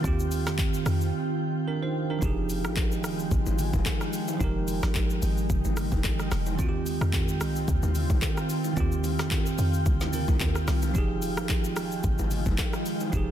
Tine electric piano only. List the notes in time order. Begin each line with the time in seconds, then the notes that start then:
0.01 D#3 C4
0.05 F4 G4
1.68 D4 A#4
1.83 D#4 C5
2.10 D4 A#4
2.19 F3 D#4
2.23 G4 G#4
4.37 F3 D#4
4.42 G4 A#4
6.55 D#3 C4
6.60 F4 F#4
6.69 G4
8.73 D#3 C4
8.78 F4 G4
10.11 D#3 C4 F4 A#4
10.91 F3 D#4
10.96 G4 G#4
13.10 F3 D#4
13.14 G4 G#4